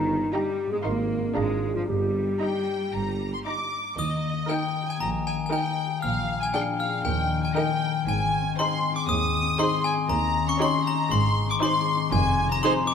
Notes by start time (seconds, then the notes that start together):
Already playing: G1 G2 D#3 A#3 D#4 G4
0.32 G3 D#4 G4 G5 A#5
0.66 G#2
0.71 G#3 C4 G#4
0.76 D#4
0.80 F4 A#4
0.84 G#1 A#3 D#4 F5 C6
1.18 G#2
1.22 A#3
1.26 D4
1.31 F4 G#4
1.35 G#1 G#3 D4 F5 A#5
1.70 G2 F4
1.75 F3 A#3
1.80 D#4
1.84 G4
1.89 G1 G3
2.41 D#4 G5 A#5
2.93 G1 A#5
3.33 C6
3.46 D#4 A#5 D6
3.98 D#2 D#3 D#5 D#6, triangle
4.15 A#3
4.33 D#4
4.49 D#4 G4 A#4 G5
4.67 A#4
4.84 G4 G#5
4.90 G#5
5.00 A#1 A#2 D#3 A#5
5.18 A#3
5.27 G#5
5.35 D#4
5.46 G#5
5.52 D#4 A#4 G5
5.70 A#4
5.87 G4
6.02 A#1 A#2 F5 F6
6.20 F3
6.37 A#3 G#5
6.43 G#5
6.54 D4 G#4 F5 G5
6.71 G#4
6.79 F5 F6
6.88 D4
7.04 D#2 D#3 G5
7.22 A#3
7.39 D#4
7.43 G#5
7.55 D#4 A#4 D#5 G5
7.73 D#4
7.90 A#4
8.07 G#1 G#2 G#5
8.25 D#3
8.41 C4
8.57 D#4 G#4 C5 C6
8.75 G#4
8.92 D#4 D6
9.09 D#2 G#2 D#6
9.25 D#3
9.42 C4
9.59 D#4 G#4 C5 C6
9.76 G#4
9.84 G#5
9.93 D#4
10.09 D#2 D#3 A#5
10.27 A#3
10.44 C#4 C#6
10.49 C#6
10.60 D#4 G4 C#5 C6
10.77 G4
10.86 A#5
10.95 D#4
11.11 G#1 G#2 C6
11.29 D#3
11.46 C4 D6
11.51 D6
11.61 D#4 G#4 C5 C6
11.79 G#4
11.96 D#4
12.12 F1 F2 G#5
12.29 C3
12.45 C4
12.51 A#5
12.61 D#4 G#4 C5 C6
12.79 G#4
12.87 D6